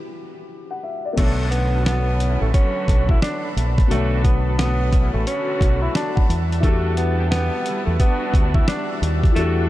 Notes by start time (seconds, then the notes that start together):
Already playing: E3 D4 F#4 G4
0.71 F#5
0.83 E5
1.05 D5
1.13 A3 B3
1.17 B1 D3 A3 D4 F#4 A4 B4 C#5 A5 B5, kick, closed hi-hat, crash
1.51 B3, closed hi-hat
1.74 D4 F#4 A4
1.83 B3 D4 F#4 A4, snare
1.88 closed hi-hat
2.19 A3 C#4 E4, closed hi-hat
2.41 A1 A3
2.53 D3 F#3 C#4 F#4, kick, closed hi-hat
2.88 B1, kick, closed hi-hat
3.09 E4, kick
3.22 D4, snare, closed hi-hat
3.56 A#1, closed hi-hat
3.78 kick, closed hi-hat
3.87 B1 B2 A3 D4 F#4 A4, closed hi-hat
3.92 D3 C#5
4.24 B3, kick, closed hi-hat
4.45 D4 F#4 A4
4.58 B3 D4 F#4 A4, snare, closed hi-hat
4.93 A3 C#4 E4, kick, closed hi-hat
5.13 A1 A3
5.27 D3 F#3 C#4 F#4, closed hi-hat
5.61 B1, kick, closed hi-hat
5.82 E4 B5
5.95 D4 A5, snare, closed hi-hat
6.15 F#5, kick
6.29 E2 G3 E5 F#5, closed hi-hat
6.52 closed hi-hat
6.60 A3 D4 E4 F#4 A4, kick, closed hi-hat
6.65 F#4 G4
6.97 B3, closed hi-hat
7.18 B3 D4 G4
7.31 B3 D4 G4, snare, closed hi-hat
7.65 G3 B3 E4, closed hi-hat
7.85 E2 A3
8.00 B3 D4 F#4, kick, closed hi-hat
8.34 D2, kick, closed hi-hat
8.54 E4, kick
8.68 D4, snare, closed hi-hat
9.02 D#2, closed hi-hat
9.24 kick, closed hi-hat
9.32 E2 E3 A3 D4 F#4 A4
9.36 F#4 G4, closed hi-hat